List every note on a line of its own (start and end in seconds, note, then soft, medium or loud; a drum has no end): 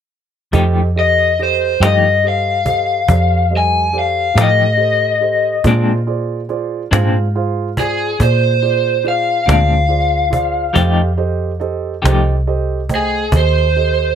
0.52 1.78 F2 medium
0.52 0.79 F3 medium
0.52 0.79 A3 medium
0.52 0.80 D#4 medium
0.52 0.85 G4 medium
0.52 0.80 G4 medium
0.52 0.85 A4 medium
0.52 0.86 C5 medium
0.52 0.85 D#5 medium
0.52 cajon bass medium
0.95 1.28 G4 soft
0.95 1.28 A4 soft
0.95 1.28 C5 soft
0.95 1.28 D#5 medium
0.95 1.39 D#5 medium
1.39 1.71 G4 soft
1.39 1.71 A4 soft
1.39 1.71 C5 soft
1.39 1.82 C5 medium
1.39 1.72 D#5 medium
1.39 cajon slap soft
1.80 3.05 G2 medium
1.80 2.08 F3 soft
1.80 2.08 A3 soft
1.80 2.08 D#4 medium
1.80 2.13 G4 soft
1.80 2.07 G4 medium
1.80 2.13 A4 soft
1.80 2.13 C5 soft
1.80 2.13 F5 soft
1.80 cajon slap medium
1.85 2.24 D#5 medium
2.24 2.56 G4 soft
2.24 2.56 A4 soft
2.24 2.56 C5 soft
2.24 2.57 D#5 soft
2.28 3.50 F5 medium
2.65 2.98 G4 soft
2.65 2.98 A4 soft
2.65 2.98 C5 soft
2.65 2.98 D#5 soft
2.65 cajon bass medium
3.08 4.33 F2 medium
3.08 3.41 G4 soft
3.08 3.41 A4 soft
3.08 3.41 C5 soft
3.08 3.41 D5 soft
3.08 cajon bass loud
3.50 3.83 G3 soft
3.50 3.83 A4 soft
3.50 3.84 C5 soft
3.50 3.83 D#5 medium
3.57 3.96 G#5 medium
3.93 4.26 G4 soft
3.93 4.26 A4 soft
3.93 4.26 C5 soft
3.93 4.26 D5 soft
3.93 cajon slap soft
3.99 4.38 F5 medium
4.34 5.60 A2 medium
4.34 4.63 F3 medium
4.34 4.63 A3 medium
4.34 4.62 D#4 medium
4.34 4.68 G4 soft
4.34 4.62 G4 medium
4.34 4.68 A4 soft
4.34 4.68 C5 soft
4.34 4.68 F5 medium
4.34 cajon slap medium
4.41 5.63 D#5 medium
4.77 5.10 G4 soft
4.77 5.11 A4 soft
4.77 5.11 C5 soft
4.77 5.11 D#5 medium
5.21 5.54 G4 soft
5.21 5.54 A4 soft
5.21 5.54 C5 soft
5.21 5.54 D#5 soft
5.21 cajon slap soft
5.64 6.89 A#2 medium
5.64 5.91 A#2 medium
5.64 5.92 G#3 medium
5.64 5.92 C4 medium
5.64 5.92 D4 medium
5.64 5.97 F4 medium
5.64 5.97 G#4 medium
5.64 5.97 C5 medium
5.64 5.97 D5 medium
5.64 cajon bass medium
6.07 6.39 F4 medium
6.07 6.39 G#4 soft
6.07 6.40 C5 medium
6.07 6.40 D5 medium
6.49 6.82 F4 medium
6.49 6.82 G#4 medium
6.49 6.82 C5 medium
6.49 6.82 D5 medium
6.49 cajon slap soft
6.91 8.17 G#2 medium
6.91 7.18 A#2 medium
6.91 7.18 G#3 medium
6.91 7.18 C4 medium
6.91 7.18 D4 medium
6.91 7.25 F4 medium
6.91 7.25 G#4 medium
6.91 7.25 C5 soft
6.91 7.25 F5 medium
6.91 cajon slap loud
7.35 7.68 F4 medium
7.35 7.67 G#4 medium
7.35 7.68 C5 medium
7.35 7.68 F5 medium
7.77 8.10 F4 soft
7.77 8.10 G#4 soft
7.77 8.20 G#4 medium
7.77 8.10 C5 soft
7.77 8.11 D5 medium
7.77 cajon bass medium
8.20 9.45 A#2 medium
8.20 8.52 F4 soft
8.20 8.53 G#4 soft
8.20 8.53 C5 soft
8.20 9.04 C5 medium
8.20 8.53 D5 medium
8.20 cajon bass medium
8.62 8.95 F4 soft
8.62 8.95 G#4 soft
8.62 8.95 C5 soft
8.62 8.95 D5 medium
9.04 9.37 F4 soft
9.04 9.37 G#4 soft
9.04 9.37 C5 soft
9.04 9.37 D5 soft
9.04 cajon slap soft
9.08 9.48 F5 medium
9.46 10.72 D2 medium
9.46 9.73 A#2 medium
9.46 9.74 G#3 medium
9.46 9.73 C4 medium
9.46 9.73 D4 medium
9.46 9.80 F4 soft
9.46 9.80 G#4 soft
9.46 9.80 C5 soft
9.46 9.80 D5 medium
9.46 cajon slap medium
9.51 11.17 F5 medium
9.88 10.22 F4 soft
9.88 10.22 G#4 soft
9.88 10.22 C5 soft
9.88 10.22 D5 soft
10.30 10.64 F4 soft
10.30 10.65 G#4 soft
10.30 10.65 C5 soft
10.30 10.65 D5 medium
10.30 cajon bass medium
10.73 12.00 F2 medium
10.73 11.00 F3 medium
10.73 11.01 A3 medium
10.73 11.01 D#4 medium
10.73 11.07 G4 medium
10.73 11.02 G4 medium
10.73 11.07 A4 medium
10.73 11.07 C5 medium
10.73 11.07 D#5 medium
10.73 cajon bass medium
11.17 11.50 G4 medium
11.17 11.50 A4 medium
11.17 11.50 C5 medium
11.17 11.51 D#5 medium
11.60 11.93 G4 medium
11.60 11.93 A4 medium
11.60 11.93 C5 medium
11.60 11.93 D#5 medium
11.60 cajon slap soft
12.02 13.28 C2 medium
12.02 12.30 F3 medium
12.02 12.29 A3 medium
12.02 12.29 D#4 medium
12.02 12.29 G4 medium
12.02 12.36 G4 medium
12.02 12.36 A4 medium
12.02 12.36 C5 medium
12.02 12.36 D#5 medium
12.02 cajon slap medium
12.47 12.79 G4 medium
12.47 12.79 A4 soft
12.47 12.79 C5 medium
12.47 12.79 D#5 medium
12.89 13.22 A3 soft
12.89 13.22 C5 soft
12.89 13.22 D#5 medium
12.89 13.22 G5 soft
12.89 cajon bass medium
12.89 cajon slap soft
12.95 13.34 G#4 medium
13.32 14.15 D#2 medium
13.32 13.65 G4 soft
13.32 13.65 A4 soft
13.32 13.65 C5 soft
13.32 13.65 D#5 medium
13.32 cajon bass loud
13.37 14.15 C5 medium
13.76 14.08 G4 soft
13.76 14.08 A4 soft
13.76 14.07 C5 soft
13.76 14.08 D#5 soft